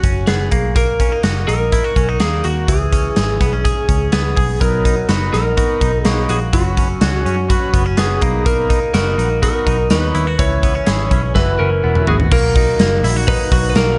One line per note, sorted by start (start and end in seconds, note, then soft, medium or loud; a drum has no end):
0.00 0.24 F#1 medium
0.00 1.75 F#3 medium
0.00 0.57 C#4 soft
0.00 0.32 F#4 medium
0.00 1.23 F#4 medium
0.00 kick medium
0.04 closed hi-hat medium
0.27 0.48 F#1 medium
0.27 0.51 B3 medium
0.27 0.76 G#4 medium
0.27 snare loud
0.27 closed hi-hat medium
0.51 1.13 B1 medium
0.51 0.75 A#3 medium
0.51 kick medium
0.51 closed hi-hat medium
0.76 2.20 A#3 medium
0.76 1.21 A#4 medium
0.76 kick loud
0.76 closed hi-hat medium
1.00 1.12 C#4 medium
1.00 kick medium
1.00 closed hi-hat medium
1.12 1.47 D#4 soft
1.23 1.44 F#1 medium
1.23 1.72 F#4 medium
1.23 snare loud
1.23 closed hi-hat medium
1.48 1.79 A#1 medium
1.48 1.96 D#4 medium
1.48 2.20 A#4 loud
1.48 closed hi-hat medium
1.72 1.84 E4 medium
1.72 kick medium
1.72 closed hi-hat medium
1.84 2.43 F#4 soft
1.96 2.17 B1 medium
1.96 2.09 C#4 medium
1.96 kick medium
1.96 closed hi-hat medium
2.09 2.73 D#4 soft
2.20 2.41 D#2 medium
2.20 2.73 A#3 medium
2.20 2.45 G#4 medium
2.20 snare loud
2.20 closed hi-hat medium
2.44 2.65 D#2 medium
2.44 2.69 F#4 medium
2.44 2.73 F#4 medium
2.44 closed hi-hat medium
2.68 3.09 C#2 medium
2.68 4.60 E3 medium
2.68 4.12 G#4 medium
2.68 kick loud
2.68 closed hi-hat medium
2.92 3.40 C#4 medium
2.92 kick medium
2.92 closed hi-hat medium
3.16 3.37 G#1 medium
3.16 3.63 G#4 medium
3.16 snare medium
3.16 closed hi-hat medium
3.41 3.71 B1 medium
3.41 3.53 B3 medium
3.41 kick medium
3.41 snare soft
3.41 closed hi-hat medium
3.53 3.87 C#4 soft
3.65 4.35 G#4 medium
3.65 kick medium
3.65 closed hi-hat medium
3.88 4.09 C#2 medium
3.88 4.66 C#4 soft
3.88 kick medium
3.88 closed hi-hat medium
4.12 4.34 C#2 medium
4.12 6.05 B3 medium
4.12 4.61 G#4 medium
4.12 snare loud
4.12 closed hi-hat medium
4.36 4.58 B1 medium
4.36 4.66 G#4 medium
4.36 kick medium
4.36 open hi-hat medium
4.60 5.02 B1 medium
4.60 6.53 F#3 medium
4.60 4.95 B3 medium
4.60 4.96 D#4 medium
4.60 4.96 A#4 medium
4.60 5.06 A#4 medium
4.60 kick loud
4.60 closed hi-hat medium
4.85 5.32 D#4 medium
4.85 kick medium
4.85 closed hi-hat medium
5.08 5.29 F#1 medium
5.08 5.43 B3 medium
5.08 5.44 D#4 medium
5.08 5.57 F#4 medium
5.08 5.44 B4 medium
5.08 snare loud
5.08 closed hi-hat medium
5.33 5.64 A#1 medium
5.33 5.80 D#4 soft
5.33 6.04 A#4 medium
5.33 snare soft
5.33 closed hi-hat medium
5.57 5.92 B3 medium
5.57 5.92 D#4 medium
5.57 6.29 F#4 medium
5.57 5.92 A#4 medium
5.57 kick medium
5.57 closed hi-hat medium
5.81 6.02 B1 medium
5.81 6.58 D#4 medium
5.81 kick medium
5.81 closed hi-hat medium
6.04 6.26 B1 loud
6.04 6.58 A#3 medium
6.04 6.40 B3 medium
6.04 6.40 D#4 medium
6.04 6.30 G#4 medium
6.04 6.40 C#5 medium
6.04 snare loud
6.04 closed hi-hat medium
6.29 6.50 A#1 medium
6.29 7.01 F#4 medium
6.29 6.37 G#4 medium
6.29 closed hi-hat medium
6.53 6.94 F#1 medium
6.53 10.03 F#3 medium
6.53 6.88 C#4 medium
6.53 6.88 F#4 medium
6.53 8.03 F#4 medium
6.53 6.89 B4 medium
6.53 kick loud
6.53 closed hi-hat medium
6.77 7.24 C#4 medium
6.77 kick medium
6.77 closed hi-hat medium
7.00 7.22 C#2 medium
7.00 7.36 C#4 medium
7.00 7.36 F#4 medium
7.00 7.49 F#4 medium
7.00 7.36 G#4 medium
7.00 snare loud
7.00 closed hi-hat medium
7.25 7.56 F#2 medium
7.25 7.73 C#4 medium
7.25 closed hi-hat medium
7.48 7.84 C#4 medium
7.48 7.84 F#4 medium
7.48 8.93 F#4 medium
7.48 7.85 B4 medium
7.48 kick medium
7.48 closed hi-hat medium
7.73 7.94 F#1 medium
7.73 7.86 B3 medium
7.73 kick medium
7.73 closed hi-hat medium
7.86 8.27 C#4 medium
7.97 8.18 F#1 medium
7.97 8.21 B3 medium
7.97 8.22 C#4 medium
7.97 8.22 F#4 medium
7.97 8.22 G#4 medium
7.97 8.46 G#4 medium
7.97 snare loud
7.97 closed hi-hat medium
8.21 8.84 B1 medium
8.21 8.44 A#3 medium
8.21 8.80 B3 medium
8.21 8.80 D#4 medium
8.21 8.80 A#4 medium
8.21 kick loud
8.21 closed hi-hat medium
8.45 9.90 A#3 medium
8.45 8.93 A#4 medium
8.45 kick loud
8.45 closed hi-hat medium
8.70 9.17 D#4 medium
8.70 kick medium
8.70 closed hi-hat medium
8.94 9.15 F#1 medium
8.94 9.29 B3 medium
8.94 9.29 D#4 medium
8.94 9.41 F#4 medium
8.94 9.30 F#4 medium
8.94 9.42 A#4 medium
8.94 snare loud
8.94 closed hi-hat medium
9.18 9.49 A#1 medium
9.18 9.65 D#4 medium
9.18 closed hi-hat medium
9.42 9.77 B3 medium
9.42 9.77 D#4 medium
9.42 10.14 F#4 medium
9.42 9.91 A#4 loud
9.42 9.78 A#4 medium
9.42 kick medium
9.42 closed hi-hat medium
9.66 9.87 B1 medium
9.66 10.44 D#4 medium
9.66 kick medium
9.66 closed hi-hat medium
9.90 10.11 D#2 medium
9.90 10.25 B3 medium
9.90 10.26 D#4 medium
9.90 10.41 B4 loud
9.90 10.26 C#5 medium
9.90 snare loud
9.90 closed hi-hat medium
10.15 10.35 D#2 medium
10.15 10.27 E4 medium
10.15 closed hi-hat medium
10.27 10.44 F#4 medium
10.38 10.80 C#2 medium
10.38 11.34 E3 medium
10.38 10.74 C#4 medium
10.38 10.74 E4 medium
10.38 10.74 B4 medium
10.38 11.35 C#5 medium
10.38 kick loud
10.38 closed hi-hat loud
10.63 10.75 B3 medium
10.63 kick medium
10.63 closed hi-hat medium
10.75 11.10 C#4 soft
10.87 11.08 G#1 medium
10.87 11.22 C#4 medium
10.87 11.22 E4 medium
10.87 11.40 G#4 medium
10.87 11.22 B4 medium
10.87 snare loud
10.87 closed hi-hat medium
11.11 11.32 B1 medium
11.11 11.40 C#4 medium
11.11 kick medium
11.11 closed hi-hat medium
11.34 11.56 F#1 medium
11.34 12.36 E3 medium
11.34 11.70 E4 medium
11.34 11.70 F#4 medium
11.34 12.03 B4 medium
11.34 11.70 B4 medium
11.34 kick medium
11.34 snare medium
11.59 11.80 F#1 medium
11.59 12.37 C#4 medium
11.59 12.08 A#4 loud
11.83 12.04 E1 medium
11.83 12.31 B3 medium
11.83 12.18 E4 medium
11.83 12.18 F#4 medium
11.83 12.18 B4 medium
11.95 mid tom medium
12.07 12.28 G#1 medium
12.07 13.04 F#4 medium
12.07 12.15 G#4 medium
12.07 floor tom medium
12.20 floor tom medium
12.32 12.73 B1 loud
12.32 13.98 D#3 medium
12.32 13.98 F#3 medium
12.32 12.79 A#3 medium
12.32 13.98 F#4 medium
12.32 13.00 A#4 loud
12.32 kick loud
12.32 crash loud
12.56 13.27 D#4 medium
12.56 kick medium
12.56 hi-hat pedal medium
12.56 open hi-hat medium
12.79 13.00 F#1 medium
12.79 13.75 A#3 medium
12.79 snare loud
12.79 hi-hat pedal medium
12.79 open hi-hat medium
13.03 13.34 A#1 medium
13.03 13.16 E4 medium
13.03 snare soft
13.03 hi-hat pedal medium
13.03 open hi-hat medium
13.16 13.51 F#4 medium
13.28 13.98 D#4 medium
13.28 13.69 B4 loud
13.28 kick loud
13.28 hi-hat pedal medium
13.28 open hi-hat medium
13.52 13.72 B1 loud
13.52 13.98 F#4 medium
13.52 kick medium
13.52 hi-hat pedal medium
13.52 open hi-hat medium
13.70 13.76 B4 medium
13.75 13.96 B1 medium
13.75 13.98 A#3 medium
13.75 13.98 A#4 loud
13.75 snare loud
13.75 hi-hat pedal medium
13.75 open hi-hat medium